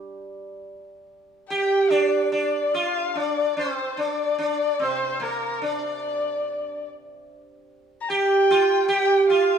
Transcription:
Already playing: G3 D4 G4
1.50 G4 G5
1.90 D4 D5
2.32 D4 D5
2.74 F4 F5
3.15 D4 D5
3.57 C4 C5
3.97 D4 D5
4.38 D4 D5
4.79 C3 C4 C5
5.20 A#3 A#4
5.62 D4 D5
8.01 A#5
8.09 G4 G5
8.51 F4
8.88 G4 G5
9.29 F4 F5

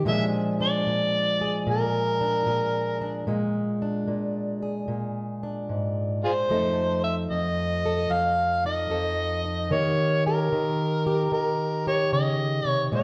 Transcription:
0.05 A#2 F3 G#3 D4 G#4 E5
0.60 D4 D5
0.86 A#2
1.41 G#4
1.67 A#2 A#4
2.21 D4
2.46 A#2 G#4
3.01 D4
3.27 A#2 G#3
3.82 D4
4.08 A#2
4.62 G#4
4.88 A#2
5.43 D4
5.69 G#2
6.24 F4 G#4 C5
6.49 F2 F3 A3 D#4 A4
7.04 E5
7.31 F2 D#5
7.86 A4
8.10 F2 F5
8.65 D#4 D#5
8.90 F2 A4
9.45 D#4
9.71 D#3 A#3 G4 C#5
10.26 G4 A#4
10.52 D#3
11.06 G4
11.32 D#3 A#4
11.87 G4 C#5
12.12 C#3 D#5
12.65 C3 C#5
12.92 A#2 G#3 D5

